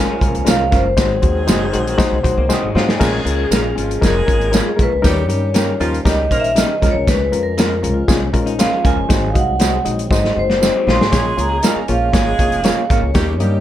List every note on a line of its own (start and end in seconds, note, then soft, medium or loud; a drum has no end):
0.00 0.68 F3 medium
0.00 0.94 F3 medium
0.00 0.16 G#3 loud
0.00 0.95 A#3 medium
0.00 0.16 C#4 medium
0.00 0.68 C#4 medium
0.00 0.94 C#4 medium
0.00 0.16 F4 medium
0.00 0.16 A#4 loud
0.00 0.68 A#4 loud
0.00 0.51 G#5 loud
0.09 0.82 F3 medium
0.09 0.82 C#4 medium
0.21 0.32 C2 loud
0.21 0.41 G#3 medium
0.21 0.41 C#4 medium
0.21 0.41 F4 medium
0.21 0.41 A#4 medium
0.21 kick medium
0.21 closed hi-hat medium
0.34 0.45 C#2 medium
0.34 closed hi-hat soft
0.45 0.67 C2 loud
0.45 0.66 G#3 medium
0.45 0.62 G#3 medium
0.45 0.66 C#4 medium
0.45 0.62 C#4 medium
0.45 0.66 F4 medium
0.45 0.62 F4 medium
0.45 0.66 A#4 medium
0.45 0.62 A#4 medium
0.45 snare loud
0.45 closed hi-hat loud
0.45 tambourine medium
0.50 0.75 F5 medium
0.71 0.98 F#1 medium
0.71 0.92 G#3 medium
0.71 0.84 G#3 medium
0.71 0.92 C#4 medium
0.71 0.84 C#4 medium
0.71 0.92 F4 medium
0.71 0.84 F4 medium
0.71 0.92 A#4 medium
0.71 0.84 A#4 medium
0.71 2.48 C5 medium
0.71 kick medium
0.71 snare soft
0.71 closed hi-hat medium
0.97 1.19 G#1 loud
0.97 2.72 D#3 medium
0.97 3.00 F#3 medium
0.97 1.17 G#3 medium
0.97 2.99 G#3 medium
0.97 2.72 C4 medium
0.97 3.00 C4 medium
0.97 1.17 D#4 medium
0.97 1.17 F#4 medium
0.97 2.72 G#4 loud
0.97 1.17 C5 loud
0.97 kick medium
0.97 snare loud
0.97 closed hi-hat medium
0.97 tambourine medium
1.22 1.49 D#2 loud
1.22 1.43 G#3 medium
1.22 1.42 D#4 medium
1.22 1.43 F#4 medium
1.22 1.43 C5 medium
1.22 kick medium
1.22 closed hi-hat medium
1.47 1.69 F#1 loud
1.47 1.63 F#3 medium
1.47 1.68 G#3 medium
1.47 1.64 C4 medium
1.47 1.68 D#4 medium
1.47 1.64 D#4 loud
1.47 1.68 F#4 medium
1.47 1.64 G#4 loud
1.47 1.68 C5 medium
1.47 snare loud
1.47 closed hi-hat medium
1.47 tambourine loud
1.73 1.95 A#1 medium
1.73 1.94 G#3 medium
1.73 1.93 D#4 medium
1.73 1.94 F#4 medium
1.73 1.93 C5 loud
1.73 closed hi-hat medium
1.87 closed hi-hat medium
1.98 2.19 G#3 loud
1.98 2.19 D#4 loud
1.98 2.18 F#4 loud
1.98 2.19 C5 loud
1.98 kick medium
1.98 snare loud
1.98 closed hi-hat medium
1.98 tambourine medium
2.12 2.22 C2 medium
2.23 2.35 A#1 loud
2.23 2.44 G#3 medium
2.23 2.44 D#4 medium
2.23 2.44 F#4 medium
2.23 2.44 C5 loud
2.23 kick medium
2.23 closed hi-hat medium
2.38 2.48 C2 medium
2.38 2.50 A#3 medium
2.49 2.62 D#3 medium
2.49 2.65 F#3 medium
2.49 2.70 G#3 loud
2.49 2.62 C4 medium
2.49 2.65 C4 medium
2.49 2.69 D#4 medium
2.49 2.65 D#4 medium
2.49 2.70 F#4 medium
2.49 2.66 G#4 loud
2.49 2.70 C5 loud
2.49 muted upright bass stroke soft
2.49 snare medium
2.49 tambourine medium
2.62 2.73 G#1 medium
2.62 2.75 F#3 medium
2.62 2.75 D#4 medium
2.75 2.96 G#2 loud
2.75 2.87 F#3 medium
2.75 2.95 G#3 medium
2.75 2.88 G#3 medium
2.75 2.87 C4 medium
2.75 2.95 D#4 medium
2.75 2.87 D#4 medium
2.75 2.88 F4 medium
2.75 2.95 F#4 medium
2.75 2.87 G#4 medium
2.75 2.95 C5 medium
2.75 snare medium
2.88 3.13 C4 medium
2.88 3.13 G#4 medium
2.88 snare medium
3.00 3.22 A#1 loud
3.00 3.20 G#3 loud
3.00 3.48 G#3 loud
3.00 5.03 G#3 medium
3.00 5.03 A#3 medium
3.00 3.20 C#4 loud
3.00 9.07 C#4 medium
3.00 3.20 F4 loud
3.00 3.48 G#4 loud
3.00 3.20 A#4 loud
3.00 kick medium
3.00 snare loud
3.00 crash loud
3.00 tambourine medium
3.25 3.46 C#2 medium
3.25 3.46 G#3 medium
3.25 3.46 C#4 medium
3.25 3.46 F4 medium
3.25 4.06 G#4 medium
3.25 3.46 A#4 medium
3.25 closed hi-hat medium
3.51 3.72 A#1 medium
3.51 3.71 G#3 medium
3.51 3.67 G#3 medium
3.51 3.72 A#3 medium
3.51 3.71 C#4 medium
3.51 3.67 C#4 medium
3.51 3.71 F4 medium
3.51 3.67 F4 medium
3.51 3.72 A#4 medium
3.51 3.71 A#4 medium
3.51 3.67 A#4 medium
3.51 snare loud
3.51 closed hi-hat medium
3.51 tambourine loud
3.76 3.98 G#1 medium
3.76 3.97 F3 medium
3.76 3.96 G#3 medium
3.76 3.96 C#4 medium
3.76 3.96 F4 medium
3.76 3.97 F4 medium
3.76 3.96 G#4 medium
3.76 closed hi-hat medium
3.91 closed hi-hat soft
4.01 4.23 F1 medium
4.01 4.22 G#3 loud
4.01 4.75 G#3 loud
4.01 4.22 C#4 medium
4.01 4.22 F4 medium
4.01 4.75 G#4 loud
4.01 4.22 A#4 loud
4.01 kick medium
4.01 snare loud
4.01 closed hi-hat medium
4.01 tambourine medium
4.06 4.52 A#4 medium
4.26 4.59 G#1 medium
4.26 4.47 G#3 medium
4.26 4.47 C#4 medium
4.26 4.47 F4 medium
4.26 4.47 A#4 medium
4.26 kick medium
4.26 closed hi-hat medium
4.41 closed hi-hat soft
4.52 4.72 G#3 medium
4.52 4.68 G#3 medium
4.52 4.72 C#4 medium
4.52 4.69 C#4 medium
4.52 4.72 F4 medium
4.52 4.69 F4 medium
4.52 4.72 A#4 medium
4.52 4.69 A#4 medium
4.52 snare loud
4.52 closed hi-hat medium
4.52 tambourine medium
4.56 4.81 G#4 medium
4.77 4.89 A#1 medium
4.77 4.98 G#3 medium
4.77 4.91 G#3 medium
4.77 4.98 C#4 medium
4.77 4.91 C#4 medium
4.77 4.98 F4 medium
4.77 4.91 F4 medium
4.77 4.98 A#4 medium
4.77 4.91 A#4 medium
4.77 kick medium
4.77 closed hi-hat medium
4.82 5.07 B4 loud
4.92 5.02 C#2 medium
5.02 5.30 D#2 loud
5.02 6.81 D#3 medium
5.02 5.23 G3 medium
5.02 5.24 G3 loud
5.02 6.81 G3 medium
5.02 5.23 C#4 medium
5.02 5.23 D#4 medium
5.02 5.25 G4 loud
5.02 5.23 A#4 loud
5.02 kick medium
5.02 snare loud
5.02 closed hi-hat medium
5.02 tambourine medium
5.07 5.78 C#5 medium
5.28 5.71 G2 medium
5.28 5.49 G3 medium
5.28 5.49 C#4 medium
5.28 5.49 D#4 medium
5.28 5.49 G4 medium
5.28 5.49 A#4 medium
5.28 closed hi-hat medium
5.54 5.75 G3 medium
5.54 5.75 A#3 medium
5.54 5.70 A#3 medium
5.54 5.75 C#4 medium
5.54 5.70 C#4 medium
5.54 5.75 D#4 medium
5.54 5.70 G4 medium
5.54 5.74 A#4 medium
5.54 5.70 A#4 medium
5.54 snare loud
5.54 closed hi-hat medium
5.54 tambourine loud
5.80 6.01 D#2 medium
5.80 6.01 F3 medium
5.80 6.00 G3 medium
5.80 6.00 C#4 medium
5.80 6.00 D#4 medium
5.80 6.01 F4 loud
5.80 6.00 A#4 loud
5.80 closed hi-hat medium
5.94 closed hi-hat soft
6.05 6.26 C#2 medium
6.05 6.25 G3 loud
6.05 6.26 G3 medium
6.05 6.25 C#4 medium
6.05 6.25 D#4 medium
6.05 6.26 G4 loud
6.05 6.25 A#4 loud
6.05 6.41 D#5 medium
6.05 kick medium
6.05 snare loud
6.05 closed hi-hat loud
6.05 tambourine medium
6.31 6.62 A#1 loud
6.31 6.51 G3 medium
6.31 6.52 A#3 medium
6.31 6.51 C#4 medium
6.31 6.51 D#4 medium
6.31 6.52 A#4 loud
6.31 6.51 C5 medium
6.31 kick medium
6.31 closed hi-hat medium
6.40 6.55 E5 loud
6.44 closed hi-hat soft
6.55 6.76 G3 medium
6.55 6.71 A#3 medium
6.55 6.76 C#4 medium
6.55 6.72 C#4 medium
6.55 6.76 D#4 medium
6.55 6.72 G4 medium
6.55 6.76 A#4 medium
6.55 6.72 A#4 medium
6.55 6.91 D#5 loud
6.55 snare loud
6.55 closed hi-hat medium
6.55 tambourine medium
6.82 6.93 C#2 medium
6.82 9.08 F3 medium
6.82 7.22 G#3 medium
6.82 9.08 G#3 medium
6.82 6.94 G#3 medium
6.82 7.22 C#4 medium
6.82 6.94 C#4 medium
6.82 7.23 F4 medium
6.82 6.94 F4 medium
6.82 7.23 A#4 medium
6.82 6.94 A#4 medium
6.82 kick medium
6.82 snare soft
6.82 closed hi-hat medium
6.91 7.05 C2 medium
6.91 7.08 C#5 loud
7.07 7.28 C#2 loud
7.07 7.43 B4 medium
7.07 kick loud
7.07 snare loud
7.07 closed hi-hat medium
7.07 tambourine medium
7.32 7.84 F2 medium
7.32 7.52 G#3 medium
7.32 7.52 C#4 medium
7.32 7.52 F4 medium
7.32 7.52 A#4 medium
7.32 closed hi-hat medium
7.43 7.59 A#4 medium
7.57 7.78 G#3 medium
7.57 7.73 G#3 medium
7.57 7.77 C#4 medium
7.57 7.73 C#4 medium
7.57 7.78 F4 medium
7.57 7.73 F4 medium
7.57 7.78 A#4 medium
7.57 7.73 A#4 medium
7.57 7.94 A#4 medium
7.57 snare loud
7.57 closed hi-hat medium
7.57 tambourine loud
7.83 8.04 C#2 medium
7.83 8.03 G#3 medium
7.83 8.03 C#4 medium
7.83 8.03 F4 medium
7.83 8.03 A#4 medium
7.83 closed hi-hat medium
7.94 8.17 F4 medium
8.08 8.34 C2 loud
8.08 8.28 G#3 loud
8.08 8.28 C#4 medium
8.08 8.28 F4 medium
8.08 8.28 G#4 loud
8.08 kick medium
8.08 snare loud
8.08 closed hi-hat loud
8.08 tambourine medium
8.33 8.65 A#1 medium
8.33 8.54 G#3 medium
8.33 8.54 C#4 medium
8.33 8.54 F4 medium
8.33 8.54 A#4 loud
8.33 kick medium
8.33 closed hi-hat medium
8.46 8.58 D#4 medium
8.46 closed hi-hat soft
8.59 8.79 G#3 medium
8.59 8.74 G#3 medium
8.59 8.72 G#3 medium
8.59 8.79 C#4 medium
8.59 8.74 C#4 medium
8.59 8.79 F4 medium
8.59 8.71 F4 medium
8.59 8.75 F4 medium
8.59 8.79 A#4 medium
8.59 8.75 A#4 medium
8.59 8.86 F5 medium
8.59 snare loud
8.59 closed hi-hat medium
8.59 tambourine medium
8.72 9.08 F3 medium
8.72 9.08 C#4 medium
8.84 8.95 C#2 medium
8.84 9.04 G#3 medium
8.84 8.97 G#3 medium
8.84 9.04 C#4 medium
8.84 8.97 C#4 medium
8.84 9.04 F4 medium
8.84 8.97 F4 medium
8.84 9.04 A#4 medium
8.84 8.97 A#4 medium
8.84 9.30 G#5 loud
8.84 kick loud
8.84 snare soft
8.84 closed hi-hat medium
8.96 9.07 F#1 medium
9.09 9.31 G#1 loud
9.09 11.11 F#3 medium
9.09 9.29 G#3 loud
9.09 13.11 G#3 medium
9.09 11.11 C4 medium
9.09 9.29 D#4 medium
9.09 9.29 F#4 medium
9.09 9.29 C5 loud
9.09 kick loud
9.09 snare loud
9.09 closed hi-hat medium
9.09 tambourine medium
9.29 9.36 F5 medium
9.34 9.77 C2 medium
9.34 9.54 G#3 medium
9.34 9.54 D#4 medium
9.34 9.55 F#4 medium
9.34 9.54 D#5 medium
9.34 kick medium
9.34 closed hi-hat medium
9.38 9.84 F#5 medium
9.59 9.76 F#3 medium
9.59 9.80 G#3 medium
9.59 9.76 C4 medium
9.59 9.80 D#4 medium
9.59 9.76 D#4 medium
9.59 9.80 F#4 medium
9.59 9.76 G#4 medium
9.59 9.80 C5 medium
9.59 snare loud
9.59 closed hi-hat medium
9.59 tambourine loud
9.85 10.06 A#1 medium
9.85 10.05 G#3 medium
9.85 10.05 D#4 medium
9.85 10.05 F#4 medium
9.85 10.05 D#5 medium
9.85 closed hi-hat medium
9.99 closed hi-hat medium
10.11 10.31 G#1 medium
10.11 10.31 G#3 loud
10.11 10.31 D#4 medium
10.11 10.31 F#4 medium
10.11 10.31 C5 loud
10.11 10.38 D#5 medium
10.11 kick loud
10.11 snare medium
10.11 tambourine medium
10.25 snare medium
10.36 10.67 F#1 medium
10.36 10.56 G#3 medium
10.36 10.57 D#4 medium
10.36 10.56 F#4 medium
10.36 10.56 C5 medium
10.36 10.90 C5 medium
10.50 10.62 A#3 medium
10.50 snare medium
10.62 10.75 D#3 medium
10.62 10.77 F#3 medium
10.62 10.82 G#3 medium
10.62 10.74 C4 medium
10.62 10.77 C4 medium
10.62 10.82 D#4 medium
10.62 10.77 D#4 medium
10.62 10.82 F#4 medium
10.62 10.77 G#4 medium
10.62 10.82 C5 medium
10.62 snare medium
10.62 tambourine medium
10.75 10.87 F#3 medium
10.75 10.87 D#4 medium
10.87 10.97 A#1 medium
10.87 10.99 F#3 medium
10.87 11.07 G#3 medium
10.87 11.00 G#3 medium
10.87 10.99 C4 medium
10.87 11.07 D#4 medium
10.87 10.99 D#4 medium
10.87 11.00 F4 medium
10.87 11.07 F#4 medium
10.87 11.00 G#4 medium
10.87 11.07 C5 medium
10.87 11.41 C6 loud
10.87 snare loud
10.99 11.10 G#1 medium
10.99 11.25 C4 medium
10.99 11.25 G#4 medium
10.99 snare loud
11.12 11.34 A#1 loud
11.12 11.60 G#3 medium
11.12 11.32 A#3 loud
11.12 13.13 A#3 medium
11.12 13.60 C#4 medium
11.12 11.32 F4 medium
11.12 11.32 G#4 medium
11.12 11.61 G#4 loud
11.12 11.32 C#5 loud
11.12 kick loud
11.12 snare loud
11.12 closed hi-hat medium
11.12 tambourine medium
11.37 11.59 C#2 medium
11.37 11.58 A#3 medium
11.37 11.57 F4 medium
11.37 11.58 G#4 medium
11.37 11.58 C#5 medium
11.37 11.65 A#5 loud
11.37 closed hi-hat medium
11.63 11.79 G#3 medium
11.63 11.83 A#3 medium
11.63 11.84 A#3 medium
11.63 11.79 C#4 medium
11.63 11.83 F4 medium
11.63 11.79 F4 medium
11.63 11.83 G#4 medium
11.63 11.84 A#4 loud
11.63 11.79 A#4 medium
11.63 11.83 D#5 medium
11.63 11.90 G#5 medium
11.63 snare loud
11.63 closed hi-hat medium
11.63 tambourine loud
11.76 muted upright bass stroke soft
11.88 12.09 A#1 medium
11.88 12.09 F3 medium
11.88 12.09 A#3 medium
11.88 12.09 F4 medium
11.88 12.08 F4 medium
11.88 12.09 G#4 medium
11.88 12.09 C#5 medium
11.88 12.94 F5 medium
11.88 closed hi-hat medium
12.13 12.34 G#1 medium
12.13 12.86 G#3 loud
12.13 12.33 A#3 loud
12.13 12.33 F4 medium
12.13 12.33 G#4 medium
12.13 12.86 G#4 loud
12.13 12.33 C#5 loud
12.13 kick medium
12.13 snare loud
12.13 closed hi-hat medium
12.13 tambourine medium
12.39 12.70 F1 medium
12.39 12.59 A#3 medium
12.39 12.59 F4 medium
12.39 12.59 G#4 medium
12.39 12.59 C#5 medium
12.39 kick medium
12.39 closed hi-hat medium
12.52 closed hi-hat soft
12.64 12.79 G#3 medium
12.64 12.84 A#3 medium
12.64 12.80 C#4 medium
12.64 12.85 F4 medium
12.64 12.80 F4 medium
12.64 12.85 G#4 medium
12.64 12.80 A#4 medium
12.64 12.84 C#5 loud
12.64 snare loud
12.64 closed hi-hat medium
12.64 tambourine medium
12.90 13.01 G#1 medium
12.90 13.02 G#3 medium
12.90 13.10 A#3 medium
12.90 13.02 C#4 medium
12.90 13.10 F4 medium
12.90 13.02 F4 medium
12.90 13.10 G#4 medium
12.90 13.02 A#4 medium
12.90 13.10 C#5 medium
12.90 13.60 C#5 medium
12.90 kick loud
12.90 snare soft
12.90 closed hi-hat medium
13.02 13.13 C#2 medium
13.14 13.40 D#2 loud
13.14 13.60 D#3 medium
13.14 13.35 G3 loud
13.14 13.60 G3 medium
13.14 13.35 A#3 medium
13.14 13.35 D#4 medium
13.14 13.35 G4 loud
13.14 13.35 G4 medium
13.14 13.35 C#5 loud
13.14 kick loud
13.14 snare loud
13.14 closed hi-hat medium
13.14 tambourine medium
13.40 13.60 G2 medium
13.40 13.60 G3 medium
13.40 13.60 A#3 medium
13.40 13.60 D#4 medium
13.40 13.60 G4 medium
13.40 13.60 D#5 medium
13.40 closed hi-hat medium